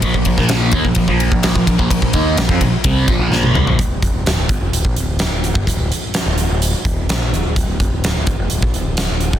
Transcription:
<<
  \new Staff \with { instrumentName = "Overdriven electric guitar" } { \clef bass \time 4/4 \key bes \major \tempo 4 = 127 <bes, f>16 <bes, f>16 <bes, f>16 <bes, f bes>8. <ees bes>16 <bes, f>16 <bes, f>16 <bes, f bes>8 <bes, f>16 <bes, f>16 <bes, f>16 <bes, f>16 <bes, f>16 | <bes, f>16 <bes, f>16 <ees bes ees'>8 <bes, f>16 <f c'>16 <bes, f>16 r16 <c g c'>8 <bes, f>16 <bes, f>16 <bes, f bes>8 <c g>16 <bes, f>16 | r1 | r1 |
r1 | }
  \new Staff \with { instrumentName = "Picked electric bass" } { \clef bass \time 4/4 \key bes \major bes,,16 bes,,16 bes,,16 bes,,8. ees,16 bes,,16 bes,,16 bes,,8 bes,,16 bes,,16 bes,,16 bes,,16 bes,,16 | bes,,16 bes,,16 ees,8 bes,,16 f,16 bes,,16 r16 c,8 bes,,16 bes,,16 bes,,8 c,16 bes,,16 | d,,16 d,,16 f,,16 d,,16 d,,16 d,,16 g,,16 f,,16 d,,16 bes,,16 d,,8. d,,8 g,,16 | d,,16 d,,16 r8. d,,8 d,,8 r16 ees,,8 bes,,8 d,,16 d,,16 |
d,,16 d,,16 f,,16 d,,16 d,,16 d,,16 g,,16 f,,16 d,,16 bes,,16 d,,8. d,,8 g,,16 | }
  \new DrumStaff \with { instrumentName = "Drums" } \drummode { \time 4/4 <bd cymr>16 bd16 <bd cymr>16 <bd sn>16 <cymr sn>8 <bd cymr>16 bd16 <bd cymr>16 bd16 cymr16 bd16 <cymr sn>16 bd16 <bd cymr>16 bd16 | <bd cymr>16 bd16 <bd cymr>8 <cymr sn>16 bd16 <bd cymr>8 <bd cymr>8 <bd cymr>8 sn16 tommh16 toml16 tomfh16 | <hh bd>8 <hh bd>8 <hh sn>8 <hh bd>8 hh16 bd16 hh8 <hh sn>8 hh16 bd16 | <hh bd>8 hh8 <hh sn>8 hh8 hh8 <hh bd>8 <hh sn>8 hh8 |
<hh bd>8 <hh bd>8 <hh sn>8 <hh bd>8 hh16 bd16 hh8 <hh sn>8 hh16 bd16 | }
>>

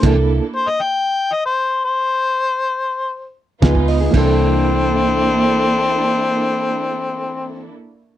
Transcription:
<<
  \new Staff \with { instrumentName = "Harmonica" } { \time 4/4 \key c \mixolydian \tempo 4 = 117 r4 c''16 ees''16 g''4 ees''16 c''8. c''8~ | c''2~ c''8 r4. | c'1~ | c'1 | }
  \new Staff \with { instrumentName = "Reed electric piano" } { \time 4/4 \key c \mixolydian << { r1 | r2. aes''8 ees''8 | r1 | r1 | } \\ { <bes d' e' a'>4 r2. | r2. <ces' ees' f'>4 | <bes d' e' a'>1~ | <bes d' e' a'>1 | } >> }
  \new Staff \with { instrumentName = "String section" } { \time 4/4 \key c \mixolydian <bes d' e' a'>4 r2. | r2. <ees' f' ces''>4 | <bes d' e' a'>1~ | <bes d' e' a'>1 | }
  \new Staff \with { instrumentName = "Clean electric guitar" } { \time 4/4 \key c \mixolydian <e bes d' a'>16 r2. r8. | r2. <f ces' ees' aes'>16 r8 <ces' ees' aes'>16 | <e bes d' a'>1~ | <e bes d' a'>1 | }
  \new Staff \with { instrumentName = "Fingered electric bass" } { \clef bass \time 4/4 \key c \mixolydian c,4 r2. | r2. des,4 | c,1~ | c,1 | }
  \new DrumStaff \with { instrumentName = "Drums" } \drummode { \time 4/4 <cymc hh bd>4 r4 r4 r4 | r4 r4 r4 <hh bd sn>16 bd16 hho8 | <cymc bd>4 r4 r4 r4 | r4 r4 r4 r4 | }
>>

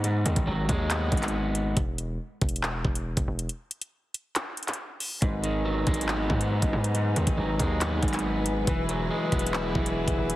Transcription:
<<
  \new Staff \with { instrumentName = "String section" } { \time 4/4 \key gis \minor \tempo 4 = 139 << { r1 | r1 | r1 | <fis gis' b'>1~ |
<fis gis' b'>1~ | <fis gis' b'>1 | } \\ { r1 | r1 | r1 | dis'1~ |
dis'1 | e'1 | } >> }
  \new Staff \with { instrumentName = "Clean electric guitar" } { \clef bass \time 4/4 \key gis \minor <gis, b>8 dis8 fis8 gis8 b8 gis,4. | r1 | r1 | gis,8 dis8 fis8 gis8 b8 gis,4. |
gis,8 dis8 fis8 gis8 b8 gis,4. | e8 fis8 gis8 b8 e'8 e4. | }
  \new Staff \with { instrumentName = "808-style bass" } { \clef bass \time 4/4 \key gis \minor gis,8 dis,16 gis,,16 gis,,8 dis,4 gis,,4. | e,,4 r8 e,,4 e,,8. e,,16 e,,8 | r1 | gis,,4. gis,,4 gis,8. gis,,16 gis,8~ |
gis,8 dis,16 gis,,16 gis,,8 dis,4 gis,,4. | e,,4 r8 e,,4 e,,8. e,,16 e,,8 | }
  \new DrumStaff \with { instrumentName = "Drums" } \drummode { \time 4/4 hh8 hh16 <hh bd>16 r8 <hh bd>8 <hc hh>8 <hh bd>32 hh32 <hc hh>32 hh32 r8 hh8 | <hh bd>8 hh8 \tuplet 3/2 { r16 r16 r16 <hh bd>16 hh16 hh16 } hc8 bd16 hh16 r16 <hh bd>8 hh16 | hh8 hh16 hh16 r8 hh8 <hc hh>8 hh32 hh32 <hc hh>32 hh32 r8 hho8 | <hh bd>8 hh8 \tuplet 3/2 { r16 r16 r16 <hh bd>16 hh16 hh16 } hc8 bd16 hh16 r16 <hh bd>8 hh16 |
hh8 hh16 <hh bd>16 r8 <hh bd>8 <hc hh>8 <hh bd>32 hh32 <hc hh>32 hh32 r8 hh8 | <hh bd>8 hh8 \tuplet 3/2 { r16 r16 r16 <hh bd>16 hh16 hh16 } hc8 bd16 hh16 r16 <hh bd>8 hh16 | }
>>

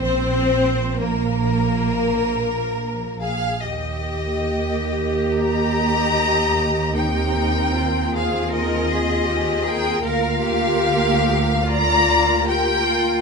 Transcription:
<<
  \new Staff \with { instrumentName = "Violin section" } { \time 4/4 \key ees \major \tempo 4 = 74 c'4 bes2~ bes8 f''8 | ees''2 bes''2 | g''4. f''8 ees''4. g''8 | f''2 bes''4 g''4 | }
  \new Staff \with { instrumentName = "Violin section" } { \time 4/4 \key ees \major c''4 bes'2~ bes'8 aes'8 | g'2 ees''2 | bes'4. aes'8 aes'4. bes'8 | bes'2 d''4 bes'4 | }
  \new Staff \with { instrumentName = "Cello section" } { \time 4/4 \key ees \major c'4 bes2~ bes8 r8 | r2 g'2 | ees'4 f'8 aes'8 bes'8 aes'8 g'8 aes'8 | bes'8 g'4. f'4 g'8 f'8 | }
  \new Staff \with { instrumentName = "Viola section" } { \time 4/4 \key ees \major << { c'4 bes2~ bes8 r8 | g'1~ | g'4 f'2. | f'2 f'2 | } \\ { r1 | bes1 | c'1 | bes2 bes2 | } >> }
  \new Staff \with { instrumentName = "Double bass section" } { \clef bass \time 4/4 \key ees \major bes,,2.~ bes,,8. r16 | ees,1~ | ees,1 | d,1 | }
>>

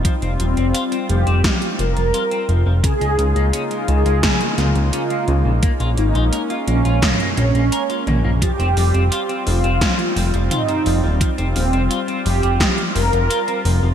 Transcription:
<<
  \new Staff \with { instrumentName = "Analog polysynth" } { \time 4/4 \key f \minor \tempo 4 = 86 ees'8 c'4 g'4 bes'4. | aes'4. aes'4. f'4~ | f'8 ees'4 des'4 des'4. | g'4. f'4. ees'4~ |
ees'8 c'4 g'4 bes'4. | }
  \new Staff \with { instrumentName = "Analog synth pad" } { \time 4/4 \key f \minor << { <c' f'>1 | <des ees' f'>1 | des'1 | <c' f'>1~ |
<c' f'>1 | } \\ { g1 | <aes bes>1~ | <aes bes>1 | g1~ |
g1 | } >> }
  \new Staff \with { instrumentName = "Clean electric guitar" } { \clef bass \time 4/4 \key f \minor f16 c'16 f16 c'16 f'16 c'16 f16 c'16 f16 f16 f16 f16 f'16 c'16 f16 f16 | des16 aes16 des16 aes16 des'16 aes16 des16 aes16 des16 des16 des16 des16 des'16 aes16 des16 des16 | bes16 f'16 bes16 f'16 bes'16 f'16 bes16 f'16 bes16 bes16 bes16 bes16 bes'16 f'16 bes16 bes16 | f16 c'16 f16 c'16 f'16 c'16 f16 c'16 f16 f16 f16 f16 f'16 c'16 f16 f16 |
f16 c'16 f16 c'16 f'16 c'16 f16 c'16 f16 f16 f16 f16 f'16 c'16 f16 f16 | }
  \new Staff \with { instrumentName = "Analog synth bass" } { \clef bass \time 4/4 \key f \minor r16 f,,16 ees,,16 f,,16 r8 f,,16 f,,16 r8 f,,16 f,,16 r8 f,,16 f,,16 | r16 des,16 des,16 des,16 r8 des,16 des,16 r8 des,16 des,16 r8 des,16 bes,,16 | r16 bes,,16 aes,,16 bes,,16 r8 bes,,16 bes,,16 r8 bes,,16 bes,,16 r8 bes,,16 bes,,16 | r16 f,,16 f,,16 f,,16 r8 f,,16 f,,16 r8 f,,16 f,,16 r8 f,,16 ees,,16 |
r16 f,,16 ees,,16 f,,16 r8 f,,16 f,,16 r8 f,,16 f,,16 r8 f,,16 f,,16 | }
  \new DrumStaff \with { instrumentName = "Drums" } \drummode { \time 4/4 <hh bd>16 hh16 hh16 hh16 hh16 hh16 hh16 hh16 <hh bd sn>16 hh16 hh16 hh16 hh16 hh16 hh8 | <hh bd>16 hh16 hh16 hh16 hh16 hh16 hh16 hh16 <hh bd sn>16 hh16 <hh sn>16 hh16 hh16 hh16 hh8 | <hh bd>16 hh16 hh16 hh16 hh16 hh16 hh16 hh16 <hh bd sn toml>16 hh16 hh16 hh16 hh16 hh16 <hh toml>8 | <hh bd>16 hh16 hho16 hh16 hh16 hh16 hho16 hh16 <hh bd sn>16 hh16 hho16 hh16 <hh toml>16 hh16 hho8 |
<hh bd>16 hh16 hho16 hh16 hh16 hh16 hho16 hh16 <hh bd sn>16 hh16 hho16 hh16 hh16 hh16 hho8 | }
>>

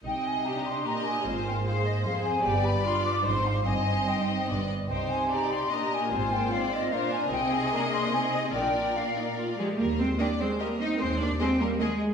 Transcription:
<<
  \new Staff \with { instrumentName = "Flute section" } { \time 3/4 \key c \minor \tempo 4 = 149 g''8 aes''8 bes''8 c'''8 bes''8 aes''8~ | aes''8 g''8 f''8 ees''8 f''8 aes''8 | g''8 b''8 c'''8 d'''8 c'''8 f''8 | aes''4 g''4 r4 |
g''8 aes''8 bes''8 c'''8 bes''8 aes''8~ | aes''8 g''8 f''8 ees''8 f''8 aes''8 | \key ees \major g''8 aes''8 bes''8 c'''8 aes''8 ees''8 | g''4 f''4 r4 |
r2. | r2. | }
  \new Staff \with { instrumentName = "Violin section" } { \time 3/4 \key c \minor r4 g'4 ees''4 | c''4 c''2 | d''2 c''4 | ees''2~ ees''8 r8 |
c''4 d''4 ees''4 | c''4 d''4 c''4 | \key ees \major ees''2. | d''2~ d''8 r8 |
r4 <g' ees''>4 <g' ees''>4 | r4 <aes' ees''>4 <aes' ees''>4 | }
  \new Staff \with { instrumentName = "Violin section" } { \time 3/4 \key c \minor ees''2 bes'4 | c''4 c''2 | b'4 b'4 c''4 | c''2 d''8 r8 |
c''4 g'4 bes'4 | c''2 bes'4 | \key ees \major aes'2 aes'4 | bes'2~ bes'8 aes'8 |
bes'8 c''8 d''8 c''8 bes'8 ees''8 | c''8 d''8 c''8 bes'8 aes'8 r8 | }
  \new Staff \with { instrumentName = "Viola section" } { \time 3/4 \key c \minor << { ees'4 g'2 | f'4 aes'4 aes'4 | g'4 f'4 ees'4 | ees'2 d'8 r8 |
ees'4 g'4 g'4 | f'2 f'4 | \key ees \major ees'4 d'4 ees'4 | f'4 d'8 ees'8 f'8 <f g'>8 |
g8 aes8 bes8 aes8 g8 c'8 | aes8 bes8 aes8 g8 ees8 r8 | } \\ { ees'4 d'2 | c'8 bes4. c'4 | b4 d'4 c'4 | c'2 b8 r8 |
ees'4 ees'4 d'4 | c'8 bes8 c'4 d'4 | c'4 bes4 c'4 | d'4 r2 |
r2. | r2. | } >> }
  \new Staff \with { instrumentName = "Cello section" } { \clef bass \time 3/4 \key c \minor c2 bes,4 | aes,2 f,4 | g,2 aes,4 | g,2 g,8 r8 |
c2 bes,4 | aes,2 bes,4 | \key ees \major c2. | bes,2~ bes,8 aes8 |
bes8 c'8 d'8 c'8 bes8 ees'8 | c'8 d'8 c'8 bes8 aes8 r8 | }
  \new Staff \with { instrumentName = "Double bass section" } { \clef bass \time 3/4 \key c \minor c,4 r2 | aes,,4 r2 | g,,4 r4 aes,,4 | g,,4 r4 g,,8 r8 |
c,4 r2 | aes,,4 r2 | \key ees \major c,4 r2 | bes,,4 r2 |
ees,4 r2 | ees,4 r2 | }
>>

